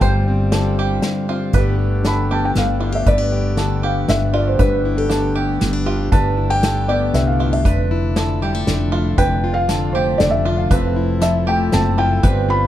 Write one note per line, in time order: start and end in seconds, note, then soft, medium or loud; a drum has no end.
0.01 0.99 G1 loud
0.01 1.51 G2 medium
0.01 0.53 G3 medium
0.01 1.53 G3 medium
0.01 1.53 F4 medium
0.01 0.51 C5 medium
0.01 1.53 C5 medium
0.01 0.99 G5 medium
0.01 kick medium
0.01 closed hi-hat soft
0.28 1.28 C4 medium
0.52 1.02 D3 medium
0.52 1.56 G3 medium
0.52 0.77 A4 medium
0.52 snare medium
0.52 closed hi-hat soft
0.79 1.28 G4 medium
1.02 1.54 D3 medium
1.02 snare medium
1.02 closed hi-hat soft
1.29 1.51 C4 medium
1.29 1.54 F4 medium
1.53 2.51 G1 medium
1.53 2.54 G2 medium
1.53 2.03 D3 medium
1.53 7.61 A3 medium
1.53 7.61 B3 medium
1.53 2.30 B3 medium
1.53 2.55 D4 medium
1.53 7.61 G4 medium
1.53 2.04 B4 medium
1.53 kick medium
1.53 closed hi-hat soft
1.57 1.78 G4 medium
1.79 2.80 G4 medium
2.04 3.56 D3 medium
2.04 2.30 A4 medium
2.04 2.32 B5 medium
2.04 snare medium
2.04 closed hi-hat soft
2.31 3.06 B3 medium
2.31 2.80 G4 medium
2.31 2.44 A5 medium
2.45 2.50 G5 medium
2.55 3.04 G1 medium
2.55 3.05 G2 medium
2.55 3.05 D4 medium
2.55 2.96 F5 medium
2.55 snare medium
2.55 closed hi-hat medium
2.80 2.92 E4 medium
2.80 3.06 F4 medium
2.92 3.06 G4 soft
2.92 3.07 E5 medium
3.06 4.04 G1 medium
3.06 4.08 G2 medium
3.06 3.18 B3 medium
3.06 3.56 B4 medium
3.06 3.79 D5 medium
3.06 kick medium
3.06 closed hi-hat soft
3.18 4.07 D4 soft
3.32 4.33 G4 medium
3.57 5.08 D3 medium
3.57 3.83 A4 medium
3.57 snare medium
3.57 closed hi-hat soft
3.83 5.36 B3 medium
3.83 4.33 G4 medium
3.83 4.10 F5 medium
4.08 4.57 G1 medium
4.08 4.59 G2 medium
4.08 4.60 D4 medium
4.08 4.35 E5 medium
4.08 snare medium
4.08 closed hi-hat soft
4.33 4.59 F4 medium
4.33 4.85 G4 medium
4.33 4.47 D5 medium
4.47 4.60 C5 medium
4.59 5.57 G1 medium
4.59 5.60 G2 medium
4.59 5.61 D4 medium
4.59 4.98 B4 medium
4.59 5.09 B4 medium
4.59 kick medium
4.59 closed hi-hat soft
4.85 4.98 E4 medium
4.97 5.85 G4 medium
4.97 5.69 A4 medium
5.10 6.62 D3 medium
5.10 5.35 A4 medium
5.10 snare medium
5.10 closed hi-hat soft
5.36 5.60 B3 medium
5.36 5.85 G4 medium
5.61 6.10 G1 medium
5.61 6.09 G2 medium
5.61 5.73 B3 medium
5.61 snare medium
5.61 closed hi-hat medium
5.73 6.11 D4 soft
5.86 6.11 F4 medium
5.86 6.09 G4 medium
6.11 7.10 G1 medium
6.11 7.12 G2 medium
6.11 7.14 D4 medium
6.11 6.62 B4 medium
6.11 6.51 A5 loud
6.11 kick medium
6.11 closed hi-hat soft
6.37 6.50 E4 medium
6.50 7.39 G4 medium
6.50 6.90 G5 loud
6.63 8.15 D3 medium
6.63 6.88 A4 medium
6.63 snare medium
6.63 closed hi-hat medium
6.88 7.62 B3 medium
6.88 7.39 G4 medium
6.88 7.15 D5 medium
7.13 7.62 C2 medium
7.13 7.62 G2 medium
7.13 7.66 D4 medium
7.13 7.27 E5 medium
7.13 snare medium
7.13 closed hi-hat soft
7.27 7.53 F5 medium
7.39 7.53 E4 medium
7.39 7.65 F4 medium
7.53 7.65 G4 soft
7.53 7.76 E5 medium
7.65 8.63 F1 medium
7.65 8.66 F2 medium
7.65 12.20 F3 medium
7.65 10.68 D4 medium
7.65 8.66 D4 medium
7.65 8.15 B4 medium
7.65 kick medium
7.65 closed hi-hat medium
7.91 8.93 E4 medium
8.16 9.67 D3 medium
8.16 8.41 A4 medium
8.16 snare medium
8.16 closed hi-hat soft
8.42 8.55 G3 medium
8.42 8.92 G4 medium
8.55 9.18 A3 soft
8.67 9.16 F1 medium
8.67 9.17 F2 medium
8.67 9.15 D4 medium
8.67 snare medium
8.67 closed hi-hat medium
8.92 9.43 E4 medium
8.92 9.17 F4 medium
9.18 10.16 F1 medium
9.18 10.19 F2 medium
9.18 10.19 D4 medium
9.18 9.68 B4 medium
9.18 9.57 G5 loud
9.18 kick medium
9.18 closed hi-hat soft
9.44 10.45 F4 medium
9.54 9.94 F5 loud
9.68 10.71 D3 medium
9.68 9.94 A4 medium
9.68 snare medium
9.68 closed hi-hat medium
9.93 10.68 A3 medium
9.93 10.45 G4 medium
9.93 10.20 C5 medium
10.18 10.69 F1 medium
10.18 10.68 F2 medium
10.18 10.68 D4 medium
10.18 10.31 D5 medium
10.18 snare medium
10.18 closed hi-hat medium
10.31 10.58 E5 medium
10.45 10.70 F4 medium
10.45 10.96 F4 medium
10.57 10.81 F5 medium
10.70 11.69 F1 loud
10.70 12.21 F2 medium
10.70 11.71 C4 medium
10.70 12.22 E4 medium
10.70 12.22 A4 medium
10.70 11.21 B4 medium
10.70 kick medium
10.70 closed hi-hat medium
10.96 11.96 E4 medium
11.21 12.20 F3 medium
11.21 11.47 A4 medium
11.21 11.49 E5 medium
11.21 snare medium
11.21 closed hi-hat medium
11.47 12.21 A3 medium
11.47 11.97 G4 medium
11.47 11.74 G5 medium
11.72 12.22 F#1 medium
11.72 12.20 C3 medium
11.72 12.21 C4 medium
11.72 12.00 A5 loud
11.72 snare medium
11.72 closed hi-hat medium
11.98 12.24 E4 medium
11.98 12.23 F4 medium
11.98 12.51 G5 loud
12.23 12.67 G1 loud
12.23 12.67 G2 medium
12.23 12.67 G3 medium
12.23 12.67 C4 medium
12.23 12.67 F4 medium
12.23 12.67 B4 loud
12.23 kick medium
12.23 closed hi-hat medium
12.49 12.67 F4 medium
12.49 12.67 B5 loud